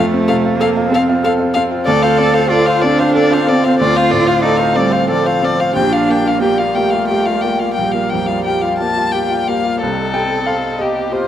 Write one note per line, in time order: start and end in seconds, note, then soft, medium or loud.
0.00 1.84 F2 medium
0.00 0.59 A3 loud
0.00 1.83 C4 medium
0.00 1.84 A4 medium
0.00 1.83 F5 medium
0.13 0.38 C4 medium
0.28 0.54 C3 medium
0.28 0.36 A4 medium
0.28 0.36 F5 medium
0.45 0.70 F4 medium
0.58 0.90 A#3 loud
0.58 0.68 A4 medium
0.58 0.69 F5 medium
0.62 0.87 A4 medium
0.77 1.02 F4 medium
0.89 1.22 C4 loud
0.89 1.17 C4 medium
0.89 0.99 A4 medium
0.94 1.02 F5 medium
1.09 1.34 F4 medium
1.23 1.31 A4 medium
1.23 1.50 A4 medium
1.23 1.32 F5 medium
1.40 1.65 F4 medium
1.54 1.81 C4 medium
1.54 1.63 A4 medium
1.54 1.62 F5 medium
1.71 1.87 F4 medium
1.85 3.77 D2 medium
1.85 5.72 C4 medium
1.85 5.72 A4 medium
1.85 2.04 A4 medium
1.85 2.51 A4 loud
1.85 2.04 D5 medium
1.85 5.72 F5 medium
2.02 2.29 F4 medium
2.02 2.20 C5 medium
2.02 2.19 F5 medium
2.18 2.45 C4 medium
2.18 2.35 A4 medium
2.18 2.35 D5 medium
2.34 2.61 F4 medium
2.34 2.49 C5 medium
2.34 2.50 F5 medium
2.49 2.84 F4 loud
2.49 2.67 A4 medium
2.49 2.77 A4 medium
2.49 2.67 D5 medium
2.66 2.93 F4 medium
2.66 2.82 C5 medium
2.66 2.83 F5 medium
2.81 3.09 C4 medium
2.81 3.50 D4 loud
2.81 3.00 A4 medium
2.81 3.00 D5 medium
2.99 3.25 F4 medium
2.99 3.14 C5 medium
2.99 3.15 F5 medium
3.14 3.32 A4 medium
3.14 3.42 A4 medium
3.14 3.35 D5 medium
3.31 3.58 F4 medium
3.31 3.48 C5 medium
3.31 3.50 F5 medium
3.47 3.74 C4 medium
3.47 3.82 C4 loud
3.47 3.65 A4 medium
3.47 3.66 D5 medium
3.64 3.90 F4 medium
3.64 3.79 C5 medium
3.64 3.79 F5 medium
3.79 5.73 D2 medium
3.79 4.44 F4 loud
3.79 3.97 A4 medium
3.79 3.98 D5 medium
3.96 4.22 C4 medium
3.96 4.12 C5 medium
3.96 4.13 F5 medium
4.11 4.38 A2 medium
4.11 4.28 A4 medium
4.11 4.28 D5 medium
4.27 4.54 F4 medium
4.27 4.41 C5 medium
4.27 4.42 F5 medium
4.42 4.77 D#4 loud
4.42 4.61 A4 medium
4.42 4.70 A4 medium
4.42 4.58 D5 medium
4.57 4.86 F4 medium
4.57 4.76 C5 medium
4.57 4.77 F5 medium
4.74 5.09 G3 loud
4.74 5.02 C4 medium
4.74 4.92 A4 medium
4.74 4.93 D5 medium
4.90 5.19 F4 medium
4.90 5.06 C5 medium
4.90 5.09 F5 medium
5.06 5.74 F3 medium
5.06 5.25 A4 medium
5.06 5.36 A4 medium
5.06 5.28 D5 medium
5.24 5.53 F4 medium
5.24 5.43 C5 medium
5.24 5.46 F5 medium
5.41 5.70 C4 medium
5.41 5.60 A4 medium
5.41 5.62 D5 medium
5.59 5.76 F4 medium
5.59 5.74 C5 medium
5.59 5.75 F5 medium
5.75 7.74 A#1 medium
5.75 9.82 G3 medium
5.75 6.42 D4 loud
5.75 5.93 G4 medium
5.75 9.80 G4 medium
5.75 9.77 F5 medium
5.75 5.94 G5 medium
5.92 6.10 F4 medium
5.92 6.19 F4 medium
5.92 6.12 F5 medium
6.09 6.36 A#3 soft
6.09 6.27 G4 medium
6.09 6.29 G5 medium
6.25 6.52 F4 soft
6.25 6.41 F4 medium
6.25 6.41 F5 medium
6.40 6.76 A#3 medium
6.40 6.61 G4 medium
6.40 6.69 G4 medium
6.40 6.59 G5 medium
6.58 6.86 F4 medium
6.58 6.78 F4 medium
6.58 6.76 F5 medium
6.74 7.75 A3 medium
6.74 7.03 A#3 soft
6.74 6.95 G4 medium
6.74 6.92 G5 medium
6.90 7.20 F4 soft
6.90 7.10 F4 medium
6.90 7.07 F5 medium
7.08 7.37 G4 soft
7.08 7.27 G4 soft
7.08 7.27 G5 soft
7.26 7.45 F4 medium
7.26 7.54 F4 soft
7.26 7.42 F5 medium
7.41 7.71 A#3 soft
7.41 7.62 G4 soft
7.41 7.60 G5 medium
7.59 7.76 F4 soft
7.59 7.88 F4 soft
7.59 7.73 F5 soft
7.74 8.77 G3 medium
7.74 7.96 G4 soft
7.74 7.93 G5 soft
7.79 9.78 A#1 medium
7.92 8.22 A#3 soft
7.92 8.13 F4 soft
7.92 8.11 F5 soft
8.09 8.40 F2 soft
8.09 8.30 G4 soft
8.09 8.28 G5 soft
8.27 8.45 F4 soft
8.27 8.57 F4 soft
8.27 8.44 F5 soft
8.44 8.64 G4 soft
8.44 8.74 G4 soft
8.44 8.63 G5 soft
8.62 8.81 F4 soft
8.62 8.91 F4 soft
8.62 8.78 F5 soft
8.79 9.08 A#3 soft
8.79 8.98 G4 soft
8.79 9.13 A5 medium
8.96 9.13 F4 soft
8.96 9.25 F4 soft
9.11 9.32 G4 soft
9.11 9.42 G4 soft
9.11 9.49 G5 medium
9.31 9.50 F4 medium
9.31 9.59 F4 soft
9.47 9.75 A#3 soft
9.47 9.65 G4 soft
9.47 9.81 F5 medium
9.63 9.80 F4 soft
9.63 9.82 F4 soft
9.80 11.28 C2 medium
9.80 10.81 C4 medium
9.80 11.28 C4 medium
9.80 11.28 G4 medium
9.80 10.81 A4 medium
9.80 10.82 A4 medium
9.80 11.28 D#5 medium
10.14 10.67 G3 soft
10.14 10.45 G5 medium
10.46 10.99 C5 soft
10.46 10.77 F5 medium
10.79 11.28 A#3 medium
10.79 11.11 G4 medium
10.79 11.14 G4 soft
10.79 11.28 D#5 medium
11.12 11.28 F4 medium
11.12 11.28 G4 medium
11.12 11.28 C5 medium